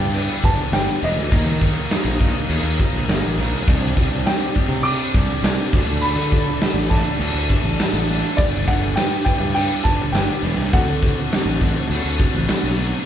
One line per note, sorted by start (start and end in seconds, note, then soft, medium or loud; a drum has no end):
0.00 0.13 G2 medium
0.00 0.27 G2 loud
0.00 0.13 D3 loud
0.00 0.13 G3 medium
0.00 0.14 B3 medium
0.00 0.14 D4 medium
0.00 0.14 E4 medium
0.00 0.14 G4 medium
0.00 0.14 B4 loud
0.00 1.30 B4 medium
0.00 0.14 D5 loud
0.00 1.28 E5 medium
0.00 0.46 G5 medium
0.00 1.30 G5 medium
0.00 1.27 D6 loud
0.14 0.42 G2 medium
0.14 0.42 D3 loud
0.14 0.43 G3 loud
0.14 0.43 B3 medium
0.14 0.43 D4 loud
0.14 0.43 E4 medium
0.14 0.44 G4 loud
0.14 0.44 B4 medium
0.14 0.44 D5 medium
0.14 crash medium
0.43 0.57 G1 medium
0.43 0.71 G2 loud
0.43 0.72 D3 medium
0.43 0.72 G3 loud
0.43 0.72 B3 loud
0.43 0.73 D4 medium
0.43 0.72 E4 loud
0.43 0.73 G4 loud
0.43 0.73 B4 loud
0.43 0.73 D5 loud
0.43 0.74 A5 loud
0.43 kick loud
0.43 crash medium
0.72 0.86 G1 medium
0.72 1.01 G2 loud
0.72 1.01 D3 loud
0.72 1.02 G3 medium
0.72 1.02 B3 loud
0.72 1.02 D4 medium
0.72 1.02 E4 medium
0.72 1.02 G4 medium
0.72 1.02 B4 medium
0.72 1.03 D5 medium
0.72 1.03 G5 loud
0.72 snare loud
0.72 crash medium
1.02 1.16 E1 medium
1.02 1.30 G2 medium
1.02 1.30 D3 medium
1.02 1.30 G3 medium
1.02 1.30 B3 loud
1.02 1.30 D4 loud
1.02 1.30 E4 medium
1.02 1.31 G4 loud
1.02 1.30 B4 medium
1.02 1.31 D5 medium
1.02 1.58 D#5 medium
1.02 crash medium
1.16 1.31 D2 medium
1.32 1.45 D#2 loud
1.32 1.60 D#3 loud
1.32 1.61 F3 medium
1.32 1.61 A#3 loud
1.32 1.61 D#4 loud
1.32 1.61 A#4 loud
1.32 3.66 A#4 medium
1.32 3.66 D#5 medium
1.32 3.66 F5 medium
1.32 3.66 D#6 medium
1.32 kick loud
1.32 crash medium
1.46 1.74 D#3 medium
1.46 snare soft
1.61 1.89 D#3 medium
1.61 1.89 F3 medium
1.61 1.89 A#3 medium
1.61 1.90 D#4 medium
1.61 1.90 A#4 medium
1.61 kick medium
1.61 crash medium
1.90 2.18 D#3 loud
1.90 2.19 F3 loud
1.90 2.19 A#3 loud
1.90 2.19 D#4 loud
1.90 2.20 A#4 loud
1.90 snare loud
1.90 crash medium
2.05 2.33 A#1 loud
2.19 2.47 D#3 medium
2.19 2.48 F3 medium
2.19 2.48 A#3 medium
2.19 2.49 D#4 medium
2.19 2.49 A#4 medium
2.19 kick medium
2.19 crash medium
2.48 2.62 D#2 loud
2.48 2.77 D#3 medium
2.48 2.77 F3 medium
2.48 2.78 A#3 medium
2.48 2.78 D#4 loud
2.48 2.78 A#4 medium
2.48 crash medium
2.63 2.77 D#2 medium
2.78 3.06 D#3 medium
2.78 3.07 F3 medium
2.78 3.07 A#3 medium
2.78 3.07 D#4 loud
2.78 3.07 A#4 loud
2.78 kick medium
2.78 crash medium
2.93 3.07 A#1 medium
3.07 3.22 G1 medium
3.07 3.35 D#3 medium
3.07 3.35 F3 medium
3.07 3.36 A#3 medium
3.07 3.36 D#4 medium
3.07 3.37 A#4 loud
3.07 snare loud
3.07 crash medium
3.23 3.37 A1 medium
3.36 3.51 A#1 medium
3.36 3.65 D#3 medium
3.36 3.65 F3 medium
3.36 3.65 A#3 medium
3.36 3.65 D#4 loud
3.36 3.65 A#4 loud
3.36 crash medium
3.52 3.65 C2 medium
3.66 3.95 C2 loud
3.66 3.95 C3 medium
3.66 3.96 G3 medium
3.66 3.96 C4 medium
3.66 3.97 D4 medium
3.66 3.96 G4 loud
3.66 5.71 C5 medium
3.66 8.34 D5 medium
3.66 5.71 G5 medium
3.66 8.34 D6 medium
3.66 kick loud
3.66 crash medium
3.96 4.24 C2 medium
3.96 4.25 C3 medium
3.96 4.25 G3 medium
3.96 4.25 C4 medium
3.96 4.27 D4 medium
3.96 4.26 G4 medium
3.96 kick medium
3.96 crash medium
4.26 4.56 C3 medium
4.26 4.56 G3 loud
4.26 4.56 C4 loud
4.26 4.57 D4 loud
4.26 4.57 G4 loud
4.26 4.87 G5 medium
4.26 snare loud
4.26 crash medium
4.56 4.85 C3 medium
4.56 4.85 G3 medium
4.56 4.86 C4 medium
4.56 4.87 D4 medium
4.56 4.86 G4 loud
4.56 kick medium
4.56 crash medium
4.68 4.97 C3 loud
4.83 5.14 C3 medium
4.83 5.14 G3 loud
4.83 5.15 C4 medium
4.83 6.05 D6 loud
4.83 crash medium
4.87 5.15 D4 medium
4.87 5.15 G4 medium
5.14 5.28 C2 medium
5.14 5.42 C3 loud
5.14 5.43 G3 loud
5.14 5.43 C4 loud
5.14 5.44 D4 loud
5.14 5.44 G4 loud
5.14 kick loud
5.14 crash medium
5.42 5.57 C2 medium
5.42 5.71 C3 medium
5.42 5.71 G3 medium
5.42 5.72 C4 medium
5.42 5.73 D4 loud
5.42 5.72 G4 loud
5.42 snare loud
5.42 crash medium
5.73 5.86 D2 medium
5.73 6.01 D3 medium
5.73 6.04 E3 medium
5.73 6.02 A3 loud
5.73 6.05 D4 loud
5.73 6.03 E4 loud
5.73 6.02 A4 loud
5.73 8.36 A4 medium
5.73 10.69 E5 medium
5.73 kick loud
5.73 crash loud
5.86 6.14 D2 medium
6.01 6.32 D3 medium
6.01 6.33 E3 medium
6.01 6.32 A3 loud
6.01 6.34 D4 loud
6.01 6.33 E4 medium
6.01 6.33 A4 loud
6.01 6.93 B5 loud
6.01 crash medium
6.16 6.44 D3 medium
6.16 snare soft
6.31 6.60 D3 medium
6.31 6.63 E3 medium
6.31 6.60 A3 medium
6.31 6.63 D4 loud
6.31 6.61 E4 medium
6.31 6.61 A4 medium
6.31 kick medium
6.31 crash medium
6.61 6.90 D3 medium
6.61 6.91 E3 medium
6.61 6.91 A3 medium
6.61 6.92 D4 loud
6.61 6.91 E4 loud
6.61 6.91 A4 loud
6.61 snare loud
6.61 crash medium
6.74 7.02 A1 medium
6.90 7.19 D3 medium
6.90 7.19 E3 medium
6.90 7.20 A3 medium
6.90 7.21 D4 medium
6.90 7.20 E4 loud
6.90 7.20 A4 medium
6.90 8.04 A5 medium
6.90 kick medium
6.90 crash medium
7.19 7.33 D2 loud
7.19 7.48 D3 medium
7.19 7.49 E3 medium
7.19 7.48 A3 medium
7.19 7.51 D4 loud
7.19 7.49 E4 medium
7.19 7.49 A4 loud
7.19 crash medium
7.34 7.48 D2 medium
7.49 7.77 D3 loud
7.49 7.78 E3 medium
7.49 7.77 A3 loud
7.49 7.80 D4 loud
7.49 7.78 E4 loud
7.49 7.78 A4 loud
7.49 kick loud
7.49 crash medium
7.64 7.77 A1 medium
7.78 8.06 D3 medium
7.78 8.08 E3 medium
7.78 8.07 A3 medium
7.78 8.10 D4 medium
7.78 8.07 E4 medium
7.78 8.07 A4 loud
7.78 snare loud
7.78 crash medium
7.93 8.21 A1 medium
8.08 8.35 D3 medium
8.08 8.36 E3 medium
8.08 8.36 A3 medium
8.08 8.39 D4 loud
8.08 8.36 E4 medium
8.08 8.36 A4 loud
8.08 crash medium
8.36 8.65 G1 loud
8.36 8.64 G2 loud
8.36 8.65 D3 medium
8.36 8.65 G3 medium
8.36 8.66 B3 loud
8.36 8.67 D4 loud
8.36 8.67 E4 loud
8.36 8.66 G4 loud
8.36 10.70 B4 medium
8.36 8.67 B4 loud
8.36 8.67 D5 loud
8.36 10.70 G5 medium
8.36 13.05 D6 medium
8.36 kick loud
8.36 crash medium
8.66 8.95 G1 medium
8.66 8.95 G2 medium
8.66 8.96 D3 medium
8.66 8.96 G3 loud
8.66 8.96 B3 medium
8.66 8.97 D4 loud
8.66 8.96 E4 loud
8.66 8.96 G4 medium
8.66 8.97 B4 loud
8.66 8.97 F#5 medium
8.66 kick medium
8.66 crash medium
8.96 9.25 G2 medium
8.96 9.25 D3 loud
8.96 9.25 G3 loud
8.96 9.26 B3 loud
8.96 9.27 D4 loud
8.96 9.26 E4 loud
8.96 9.26 G4 medium
8.96 9.26 B4 loud
8.96 9.23 G5 loud
8.96 snare loud
8.96 crash medium
9.25 9.54 G2 medium
9.25 9.55 D3 medium
9.25 9.55 G3 medium
9.25 9.55 B3 medium
9.25 9.57 D4 medium
9.25 9.55 E4 medium
9.25 9.56 G4 medium
9.25 9.55 B4 loud
9.25 9.53 G5 loud
9.25 kick medium
9.25 crash medium
9.40 9.68 G2 loud
9.55 9.84 G2 medium
9.55 9.85 D3 loud
9.55 9.85 G3 medium
9.55 9.85 B3 loud
9.55 9.86 D4 medium
9.55 9.84 E4 medium
9.55 9.86 G4 loud
9.55 9.85 B4 medium
9.55 9.85 G5 loud
9.55 crash medium
9.84 9.98 G1 medium
9.84 10.13 G2 medium
9.84 10.13 D3 loud
9.84 10.14 G3 loud
9.84 10.14 B3 loud
9.84 10.15 D4 loud
9.84 10.14 E4 loud
9.84 10.15 G4 loud
9.84 10.14 B4 loud
9.84 10.11 A5 loud
9.84 kick medium
9.84 crash medium
10.12 10.27 G1 loud
10.12 10.42 G2 medium
10.12 10.42 D3 medium
10.12 10.43 G3 medium
10.12 10.44 B3 loud
10.12 10.44 D4 loud
10.12 10.42 E4 medium
10.12 10.44 G4 loud
10.12 10.43 B4 loud
10.12 10.74 G5 loud
10.12 snare loud
10.12 crash medium
10.43 10.56 E1 medium
10.43 10.71 G2 loud
10.43 10.71 D3 medium
10.43 10.71 G3 medium
10.43 10.72 B3 medium
10.43 10.74 D4 medium
10.43 10.71 E4 medium
10.43 10.72 G4 loud
10.43 10.71 B4 medium
10.43 crash medium
10.57 10.71 C2 loud
10.73 10.86 D2 loud
10.73 11.01 D3 loud
10.73 11.02 A3 loud
10.73 11.01 C4 loud
10.73 11.02 D4 loud
10.73 11.02 F#4 loud
10.73 11.02 A4 loud
10.73 13.06 C5 medium
10.73 12.46 F#5 loud
10.73 13.06 F#5 medium
10.73 13.06 A5 medium
10.73 kick loud
10.73 crash medium
10.86 11.14 D3 medium
11.02 11.30 D3 medium
11.02 11.31 A3 medium
11.02 11.31 C4 medium
11.02 11.31 D4 medium
11.02 11.32 F#4 medium
11.02 11.31 A4 medium
11.02 kick medium
11.02 crash medium
11.32 11.60 D3 medium
11.32 11.60 A3 loud
11.32 11.59 C4 loud
11.32 11.61 D4 medium
11.32 11.61 F#4 medium
11.32 11.60 A4 loud
11.32 snare loud
11.32 crash medium
11.45 11.73 A1 medium
11.60 11.90 D3 medium
11.60 11.90 A3 medium
11.60 11.88 C4 loud
11.60 11.90 D4 medium
11.60 11.91 F#4 medium
11.60 11.89 A4 medium
11.60 kick medium
11.60 crash medium
11.90 12.04 D2 loud
11.90 12.19 D3 medium
11.90 12.20 A3 medium
11.90 12.19 C4 medium
11.90 12.20 D4 loud
11.90 12.20 F#4 loud
11.90 12.19 A4 medium
11.90 crash medium
12.04 12.19 D2 medium
12.20 12.48 D3 medium
12.20 12.48 A3 loud
12.20 12.48 C4 medium
12.20 12.49 D4 loud
12.20 12.50 F#4 loud
12.20 12.49 A4 loud
12.20 kick medium
12.20 crash medium
12.34 12.48 A1 medium
12.48 12.78 D3 medium
12.48 12.78 A3 medium
12.48 12.78 C4 medium
12.48 12.79 D4 loud
12.48 12.79 F#4 medium
12.48 12.79 A4 medium
12.48 snare loud
12.48 crash medium
12.63 12.91 B1 medium
12.79 13.06 D3 medium
12.79 13.06 A3 medium
12.79 13.06 C4 medium
12.79 13.06 D4 loud
12.79 13.06 F#4 medium
12.79 13.06 A4 medium
12.79 crash medium